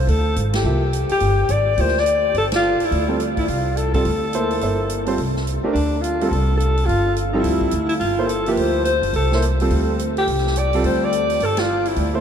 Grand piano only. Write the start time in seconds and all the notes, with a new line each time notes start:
0.65 F3 A#3 E4 G4
1.78 F3 A#3 E4 G4
3.08 G3 C4 F4 A4
3.94 G3 C4 F4 A4
4.34 A#3 E4 A4 C5
4.62 A#3 E4 A4 C5
5.06 G3 C4 F4 C5
5.64 A3 D4 G4 A#4
6.22 G3 C4 F4 A4
7.34 F3 G3 C4 A4
8.18 A#3 E4 A4 C5
8.47 F3 A#3 E4 G4
9.34 A#3 E4 A4 C5
9.61 G3 C4 F4 A4
10.74 G3 C4 F4 A4
12.14 A#3 E4 A4 C5